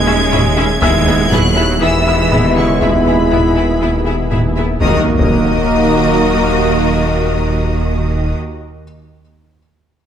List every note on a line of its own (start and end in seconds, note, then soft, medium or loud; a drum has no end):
0.00 0.78 D#1 medium
0.00 0.26 D#2 loud
0.00 0.78 C#3 medium
0.00 0.82 C#3 medium
0.00 0.78 G#3 medium
0.00 0.79 G#3 loud
0.00 0.78 C#4 medium
0.00 0.82 C#4 medium
0.00 0.78 G#4 medium
0.00 0.81 G#4 medium
0.00 0.82 E5 medium
0.00 0.80 G#6 loud
0.05 0.14 C#4 medium
0.05 0.15 E4 medium
0.05 0.13 G#4 medium
0.05 0.14 E5 medium
0.32 0.76 D#2 loud
0.32 0.69 D#2 medium
0.32 0.40 C#4 medium
0.32 0.40 E4 medium
0.32 0.40 G#4 medium
0.32 0.40 E5 medium
0.32 taiko low-mid medium
0.56 0.65 C#4 medium
0.56 0.65 E4 medium
0.56 0.64 G#4 medium
0.56 0.64 E5 medium
0.81 4.78 D#1 medium
0.81 1.26 D#2 loud
0.81 1.31 G#3 loud
0.81 4.54 G#3 loud
0.81 4.53 B3 loud
0.81 0.90 B3 medium
0.81 4.83 B3 medium
0.81 0.90 E4 medium
0.81 4.53 E4 loud
0.81 4.78 E4 loud
0.81 4.54 E4 loud
0.81 0.90 G#4 loud
0.81 4.78 G#4 medium
0.81 0.89 E5 medium
0.81 2.28 E5 medium
0.81 4.79 E5 medium
0.81 2.06 E6 medium
0.81 1.31 G#6 loud
0.81 taiko loud
1.07 1.15 B3 medium
1.07 1.15 E4 medium
1.07 1.16 G#4 medium
1.07 1.15 E5 medium
1.31 1.76 D#2 loud
1.31 1.76 D#2 medium
1.31 1.82 F#3 loud
1.31 1.40 B3 medium
1.31 1.40 E4 medium
1.31 1.40 G#4 medium
1.31 1.40 E5 medium
1.31 1.82 F#6 loud
1.31 taiko low-mid medium
1.56 1.64 B3 medium
1.56 1.64 E4 medium
1.56 1.65 G#4 medium
1.56 1.64 E5 medium
1.81 2.26 D#2 medium
1.81 2.55 E3 medium
1.81 1.89 B3 medium
1.81 1.89 E4 medium
1.81 1.89 G#4 medium
1.81 1.89 E5 medium
1.81 2.55 E6 loud
2.06 2.15 B3 medium
2.06 2.15 E4 medium
2.06 2.14 G#4 medium
2.06 2.15 E5 medium
2.06 3.53 E6 medium
2.31 2.76 D#2 medium
2.31 2.39 B3 medium
2.31 2.39 E4 medium
2.31 2.40 G#4 medium
2.31 2.40 E5 medium
2.31 taiko low-mid medium
2.56 2.82 C#3 medium
2.56 2.64 B3 medium
2.56 2.65 E4 medium
2.56 2.64 G#4 medium
2.56 2.64 E5 medium
2.56 2.81 C#6 medium
2.81 3.26 D#2 medium
2.81 4.32 B2 medium
2.81 2.90 B3 medium
2.81 2.90 E4 medium
2.81 2.89 G#4 medium
2.81 2.89 E5 medium
2.81 4.32 B5 medium
2.81 taiko loud
3.06 3.14 B3 medium
3.06 3.14 E4 medium
3.06 3.15 G#4 medium
3.06 3.15 E5 medium
3.31 3.76 D#2 medium
3.31 3.39 B3 medium
3.31 3.39 E4 medium
3.31 3.40 G#4 medium
3.31 3.40 E5 medium
3.31 taiko low-mid medium
3.55 3.63 B3 medium
3.55 3.63 E4 medium
3.55 3.64 G#4 medium
3.55 3.65 E5 medium
3.81 4.26 D#2 medium
3.81 3.89 B3 medium
3.81 3.89 E4 medium
3.81 3.89 G#4 medium
3.81 3.90 E5 medium
4.06 4.14 B3 medium
4.06 4.14 E4 medium
4.06 4.14 G#4 medium
4.06 4.14 E5 medium
4.31 4.76 D#2 medium
4.31 4.40 B3 medium
4.31 4.40 E4 medium
4.31 4.39 G#4 medium
4.31 4.39 E5 medium
4.31 taiko low-mid medium
4.56 4.66 B3 medium
4.56 4.65 E4 medium
4.56 4.64 G#4 medium
4.56 4.64 E5 medium
4.80 4.95 D#1 medium
4.80 4.96 D#2 medium
4.80 4.97 D#2 medium
4.80 4.96 D#3 medium
4.80 7.96 F#3 medium
4.80 7.97 F#3 medium
4.80 7.96 A#3 medium
4.80 7.97 A#3 medium
4.80 4.98 A#3 medium
4.80 7.97 D#4 medium
4.80 4.98 F#4 medium
4.80 4.96 A#4 medium
4.80 7.97 A#4 medium
4.80 4.96 D#5 medium
4.80 7.96 D#5 medium
4.80 4.96 D#6 medium
4.80 taiko loud
4.80 impact medium
5.18 8.34 D#1 medium
5.18 8.34 D#2 medium
5.18 8.34 D#3 medium
5.18 8.35 A#3 medium
5.18 8.35 F#4 medium
5.18 8.34 A#4 medium
5.18 8.34 D#5 medium
5.18 8.34 D#6 medium
5.18 taiko loud